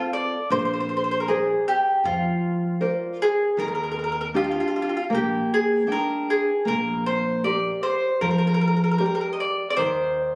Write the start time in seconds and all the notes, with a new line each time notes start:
Already playing: C4 F4 A4
0.13 D5
0.50 A#1 A#3 C5
0.59 C5
0.65 C5
0.73 C5
0.80 C5
0.89 C5
0.97 C5
1.04 C5
1.11 C5
1.20 A#4
1.28 G#4 A#4 C5 D5
1.68 G4
2.04 F2 F3 F4
2.81 A#4 C5 D5
3.22 G#4
3.57 D#2 D#3 A#4
3.68 A#4
3.75 A#4
3.84 A#4
3.92 A#4
3.99 A#4
4.04 A#4
4.12 A#4
4.21 A#4
4.34 D4 D#4 F4 G4
4.44 F4
4.51 F4
4.60 F4
4.68 F4
4.76 F4
4.82 F4
4.89 F4
4.97 F4
5.10 A#1 A#3
5.15 G4
5.54 G#4
5.87 D4 D#4 G5
5.92 A#4
6.30 G#4
6.65 A#1 A#3 A#4
7.06 C5
7.44 G4 A#4 D5
7.83 C5
8.21 F2 F3 A#4
8.31 A#4
8.38 A#4
8.47 A#4
8.54 A#4
8.61 A#4
8.68 A#4
8.77 A#4
8.84 A#4
8.91 A#4
8.98 G4 A#4 D5
9.06 A#4
9.15 A#4
9.21 A#4
9.33 D#5
9.40 D5
9.70 D5
9.77 D#2 D#3 C5